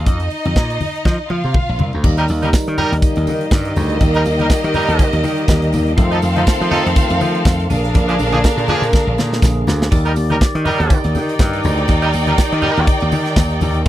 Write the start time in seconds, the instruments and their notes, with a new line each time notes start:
0.06 slap bass F2, violin section D#4 D#5, kick, closed hi-hat, low conga
0.20 closed hi-hat
0.30 open hi-hat, muted conga
0.45 slap bass F2, closed hi-hat, high conga
0.56 slap bass A#2, kick, snare
0.70 closed hi-hat
0.81 open hi-hat, muted conga, high conga, low conga
0.96 closed hi-hat
1.05 slap bass F3, kick, snare, high conga
1.30 slap bass F3, violin section F4 F5, high tom, high conga
1.44 slap bass C3, high tom
1.54 kick, mid tom, muted conga, high conga
1.69 slap bass A#1
1.79 slap bass C2, floor tom, muted conga, high conga
1.93 slap bass D2, floor tom
2.04 slap bass D#2, tonewheel organ D#3 G3 D#4, kick, crash, muted conga, low conga
2.17 horn section G3 D#4 A#4, closed hi-hat
2.28 slap bass D#2, open hi-hat, tambourine, muted conga
2.42 horn section G3 D#4 A#4, closed hi-hat, high conga
2.53 kick, snare, tambourine
2.67 slap bass D#3, closed hi-hat
2.78 horn section G3 D#4 A#4, open hi-hat, muted conga, high conga, low conga
2.92 slap bass D#2, closed hi-hat
3.02 violin section A#3 G4 D#5, kick, closed hi-hat, tambourine, high conga
3.16 slap bass D#2, closed hi-hat
3.27 slap bass D#3, open hi-hat, tambourine, muted conga, high conga
3.41 closed hi-hat
3.51 slap bass G2, kick, snare, tambourine, muted conga, high conga
3.65 closed hi-hat
3.76 slap bass D2, open hi-hat, tambourine, muted conga, high conga, low conga
3.90 closed hi-hat
4.01 slap bass D#2, kick, closed hi-hat, tambourine, muted conga, low conga
4.14 horn section G3 D#4 A#4, closed hi-hat
4.24 slap bass D#2, open hi-hat, tambourine, muted conga
4.39 horn section G3 D#4 A#4, closed hi-hat, high conga
4.50 muted slap bass stroke, kick, snare, tambourine
4.64 slap bass D#3, closed hi-hat
4.74 horn section G3 D#4 A#4, open hi-hat, muted conga, high conga, low conga
4.88 slap bass D#2, closed hi-hat
4.99 kick, closed hi-hat, tambourine, muted conga, high conga
5.13 slap bass D#2, closed hi-hat
5.23 slap bass D#3, open hi-hat, tambourine, high conga
5.38 closed hi-hat
5.48 slap bass D#2, kick, snare, tambourine, muted conga, high conga
5.62 closed hi-hat
5.72 slap bass D#2, open hi-hat, tambourine, high conga, low conga
5.87 closed hi-hat
5.97 slap bass F2, tonewheel organ D#3 A3 F4, violin section C4 A4 F5, kick, closed hi-hat, tambourine, low conga
6.11 horn section F3 D#4 A4, closed hi-hat
6.22 slap bass F2, open hi-hat, tambourine, muted conga
6.36 horn section F3 D#4 A4, closed hi-hat, high conga
6.47 kick, snare, tambourine
6.61 slap bass F3, closed hi-hat
6.71 horn section F3 D#4 A4, open hi-hat, muted conga, high conga, low conga
6.86 slap bass F2, closed hi-hat
6.96 kick, closed hi-hat, tambourine, muted conga, high conga
7.10 slap bass F2, closed hi-hat
7.21 slap bass F3, open hi-hat, tambourine, muted conga, high conga
7.35 closed hi-hat
7.45 slap bass F2, kick, snare, tambourine, high conga
7.60 closed hi-hat
7.69 slap bass A#1, tonewheel organ D3 A#3 G#4, violin section D4 A#4 F5, open hi-hat, tambourine, high conga, low conga
7.84 closed hi-hat
7.94 slap bass A#1, kick, closed hi-hat, tambourine, muted conga, low conga
8.08 horn section F3 D4 G#4, closed hi-hat
8.19 slap bass A#1, open hi-hat, tambourine, muted conga
8.33 horn section F3 D4 G#4, closed hi-hat, high conga
8.44 kick, snare, tambourine
8.57 slap bass A#2, closed hi-hat
8.68 horn section F3 D4 G#4, open hi-hat, muted conga, high conga, low conga
8.82 slap bass A#2, closed hi-hat
8.93 kick, snare, tambourine, muted conga, high conga
9.07 slap bass A#1
9.18 slap bass A#2, snare, tambourine, high conga
9.33 snare
9.42 slap bass A#1, kick, snare, tambourine, muted conga, high conga
9.67 slap bass D2, snare, tambourine, muted conga, high conga, low conga
9.82 snare
9.91 slap bass D#2, tonewheel organ D#3 G4 D5, kick, tambourine, splash, muted conga, low conga
10.05 horn section G3 D#4 A#4, closed hi-hat
10.16 slap bass D#2, open hi-hat, tambourine, muted conga
10.30 horn section G3 D#4 A#4, closed hi-hat, high conga
10.41 muted slap bass stroke, kick, snare, tambourine, muted conga
10.55 slap bass D#3, closed hi-hat
10.65 horn section G3 D#4 A#4, open hi-hat, muted conga, high conga, low conga
10.80 slap bass D#2, closed hi-hat
10.90 violin section D#4 D5 G5, kick, closed hi-hat, tambourine, muted conga, high conga
11.04 slap bass D#2, closed hi-hat
11.15 slap bass D#3, open hi-hat, tambourine, muted conga, high conga
11.29 closed hi-hat
11.39 slap bass G2, kick, snare, tambourine, high conga
11.53 closed hi-hat
11.64 slap bass D2, open hi-hat, tambourine, high conga, low conga
11.78 closed hi-hat
11.88 slap bass D#2, kick, closed hi-hat, tambourine, muted conga, low conga
12.02 horn section G3 D#4 A#4, closed hi-hat
12.13 slap bass D#2, open hi-hat, tambourine, muted conga
12.26 horn section G3 D#4 A#4, closed hi-hat, high conga
12.38 kick, snare, tambourine
12.52 slap bass D#3, closed hi-hat
12.62 horn section G3 D#4 A#4, open hi-hat, muted conga, high conga, low conga
12.77 slap bass D#2, closed hi-hat
12.87 kick, closed hi-hat, tambourine, muted conga, high conga
13.00 slap bass D#2, closed hi-hat
13.12 slap bass D#3, open hi-hat, tambourine, muted conga, high conga
13.26 snare, closed hi-hat
13.36 slap bass D#2, kick, snare, tambourine, high conga
13.50 closed hi-hat
13.60 slap bass D#2, open hi-hat, tambourine, muted conga, high conga, low conga
13.74 closed hi-hat
13.85 tonewheel organ A3